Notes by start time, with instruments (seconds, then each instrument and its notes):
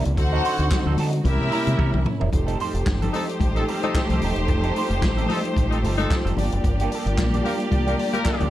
Already playing: string section C3 A#3 D4 E4, clean electric guitar G3
0.05 fingered electric bass C#2, muted clean electric guitar stroke, closed hi-hat
0.16 fingered electric bass D2, string section D3 C4 D#4 F#4 F#5, horn section F#4 A4 C5, muted clean electric guitar stroke, kick, closed hi-hat
0.32 clean electric guitar F#3 C4 D#4 A4
0.45 clean electric guitar F#3 C4 D#4 C5, open hi-hat
0.59 fingered electric bass D2, muted clean electric guitar stroke, closed hi-hat
0.71 muted clean electric guitar stroke, kick, snare, clap, closed hi-hat, high conga
0.86 fingered electric bass D2, clean electric guitar F#3 C4 D#4 A4, low conga
0.97 fingered electric bass D3, clean electric guitar F#3 C4 D#4 A4, open hi-hat, muted conga, high conga
1.13 muted clean electric guitar stroke, closed hi-hat
1.24 fingered electric bass C2, string section C3 A#3 C#4 E4 E5, horn section E4 G4 A#4, kick, closed hi-hat, muted conga, high conga
1.40 fingered electric bass C3, muted clean electric guitar stroke
1.51 clean electric guitar G3 C#4 E4 A#4, open hi-hat
1.66 fingered electric bass C3, muted clean electric guitar stroke, closed hi-hat, high conga
1.78 fingered electric bass C3, clean electric guitar G3 C#4 E4 A#4, kick, high tom
1.93 fingered electric bass C2, muted clean electric guitar stroke, mid tom, low conga
2.05 muted clean electric guitar stroke, mid tom, muted conga, low conga
2.20 fingered electric bass E1, clean electric guitar G3 C#4 E4 A#4, floor tom
2.32 fingered electric bass F1, string section F3 A3 D#4 G4 A4 C5, kick, closed hi-hat, muted conga
2.47 clean electric guitar G3 C4 D#4 A4, closed hi-hat
2.60 clean electric guitar G3 C4 D#4 C5, open hi-hat
2.74 fingered electric bass F1, muted clean electric guitar stroke, closed hi-hat
2.86 fingered electric bass G1, muted clean electric guitar stroke, kick, snare, clap, muted conga, high conga
3.02 clean electric guitar G3 C4 D#4 A4, closed hi-hat, low conga
3.13 clean electric guitar G3 C4 D#4 A4, horn section C4 D#4 A4, open hi-hat, high conga
3.29 muted clean electric guitar stroke, closed hi-hat
3.40 fingered electric bass A1, kick, closed hi-hat, high conga
3.55 horn section C4 D#4 A4, muted clean electric guitar stroke, closed hi-hat
3.68 clean electric guitar G3 C4 D#4 A4, open hi-hat
3.83 horn section C4 D#4 A4, muted clean electric guitar stroke, closed hi-hat, high conga
3.95 muted clean electric guitar stroke, kick, snare, clap, muted conga
4.10 fingered electric bass C2, clean electric guitar G3 C4 D#4 A4, closed hi-hat, low conga
4.21 fingered electric bass D#1, clean electric guitar G3 C4 D#4 A4, open hi-hat, muted conga, low conga
4.36 fingered electric bass E1, muted clean electric guitar stroke, closed hi-hat
4.48 fingered electric bass F1, string section F4, muted clean electric guitar stroke, kick, closed hi-hat, muted conga
4.63 clean electric guitar G3 C4 D#4 A4, closed hi-hat
4.76 clean electric guitar G3 C4 D#4 C5, open hi-hat
4.90 fingered electric bass F1, muted clean electric guitar stroke, closed hi-hat
5.02 fingered electric bass A1, kick, snare, clap, muted conga, high conga
5.17 clean electric guitar G3 C4 D#4 A4, closed hi-hat, low conga
5.29 clean electric guitar G3 C4 D#4 A4, horn section C4 D#4 A4, open hi-hat, muted conga, high conga
5.45 muted clean electric guitar stroke, closed hi-hat
5.56 fingered electric bass A1, kick, closed hi-hat, high conga
5.71 horn section C4 D#4 A4, muted clean electric guitar stroke, closed hi-hat
5.83 fingered electric bass G1, clean electric guitar G3 C4 D#4 A4, open hi-hat, muted conga
5.97 horn section C4 D#4 A4, muted clean electric guitar stroke, closed hi-hat, high conga
6.11 kick, snare, clap
6.25 fingered electric bass F1, clean electric guitar G3 C4 D#4 A4, closed hi-hat, low conga
6.37 fingered electric bass G1, clean electric guitar F3 A#3 D4 G4, string section G3 A#3 D4 G4 A#4 D5, open hi-hat, muted conga, low conga
6.52 fingered electric bass F#1, muted clean electric guitar stroke, closed hi-hat
6.64 fingered electric bass G1, muted clean electric guitar stroke, kick, closed hi-hat
6.80 clean electric guitar F3 A#3 D4 G4, closed hi-hat
6.92 clean electric guitar F3 A#3 D4 A4, open hi-hat
7.06 fingered electric bass G1, muted clean electric guitar stroke, closed hi-hat
7.18 fingered electric bass A#1, muted clean electric guitar stroke, kick, snare, clap, muted conga, high conga
7.34 clean electric guitar F3 A#3 D4 G4, closed hi-hat, low conga
7.44 clean electric guitar F3 A#3 D4 G4, horn section F4 G4 A#4, open hi-hat, muted conga, high conga
7.60 muted clean electric guitar stroke, closed hi-hat
7.71 fingered electric bass C2, muted clean electric guitar stroke, kick, closed hi-hat, high conga
7.86 clean electric guitar F3 A#3 D4 G4, horn section F4 G4 A#4, closed hi-hat
7.98 muted clean electric guitar stroke, open hi-hat, muted conga
8.12 horn section F4 G4 A#4, muted clean electric guitar stroke, closed hi-hat, high conga
8.25 muted clean electric guitar stroke, kick, snare, clap, muted conga
8.40 fingered electric bass D2, clean electric guitar F3 A#3 D4 G4, closed hi-hat, low conga